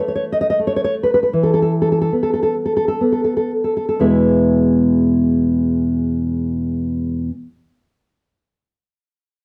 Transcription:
Already playing: A3
0.08 C#5
0.16 C#5
0.32 D#5
0.41 D#5
0.50 D#5
0.59 A3
0.67 C#5
0.76 C#5
0.84 C#5
1.03 B4
1.14 B4
1.23 B4
1.33 E3
1.43 A4
1.54 A4
1.62 A4
1.82 A4
1.92 A4
2.02 A4
2.12 B3
2.23 A4
2.34 A4
2.43 A4
2.66 A4
2.77 A4
2.88 A4
3.01 B3
3.12 A4
3.24 A4
3.37 A4
3.64 A4
3.77 A4
3.89 A4
3.99 E2 B2 G#3 B3 E4

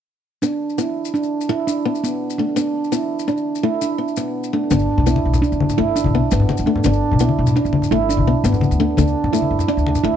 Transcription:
0.42 B3 D4, maracas
0.70 maracas
0.78 B3 E4, maracas
1.05 maracas
1.14 D4, maracas
1.23 maracas
1.41 maracas
1.49 E4, muted nylon-string guitar stroke
1.67 D4, maracas
1.85 B3
1.95 maracas
2.04 B3, maracas
2.30 maracas
2.38 A3 D4
2.56 B3 D4, maracas
2.84 maracas
2.92 B3 E4, maracas
3.19 maracas
3.28 D4, maracas
3.37 maracas
3.55 maracas
3.63 A3 E4
3.81 D4, maracas
3.98 B3
4.08 maracas
4.17 B3, maracas
4.44 maracas
4.53 A3 D4
4.70 G1 B3 D4, high conga, maracas
4.79 maracas
4.98 B1, low conga
5.06 B3 E4, low conga, maracas
5.16 high conga, low conga
5.25 B1
5.34 low conga, maracas
5.42 D4, maracas
5.52 G1, low conga, maracas
5.60 high conga, low conga
5.69 low conga, maracas
5.78 G1 A3 E4
5.96 D4, maracas
6.04 B1, high conga, low conga
6.15 B3
6.31 G1 B3, maracas
6.40 low conga
6.49 high conga, maracas
6.57 D2, maracas
6.66 A3 D4
6.76 low conga
6.84 G1 B3 D4, high conga, maracas
6.93 maracas
7.12 B1, low conga
7.19 B3 E4, low conga, maracas
7.29 high conga, low conga
7.39 B1
7.47 low conga, maracas
7.56 D4, maracas
7.65 G1, low conga, maracas
7.73 high conga, low conga
7.82 low conga, maracas
7.91 G1 A3 E4, low conga
8.09 D4, maracas
8.17 B1, high conga, low conga
8.27 B3
8.44 G1 B3, maracas
8.53 low conga, maracas
8.61 high conga, maracas
8.71 D2, maracas
8.80 A3 D4
8.97 D2 A3 D4, high conga, maracas
9.07 maracas
9.24 F#2, low conga
9.33 A3 E4, low conga, maracas
9.42 high conga, low conga
9.51 F#2
9.59 low conga, maracas
9.68 D4, maracas
9.77 D2, low conga, maracas
9.87 high conga, low conga
9.95 low conga, maracas
10.04 D2 A3 E4, low conga

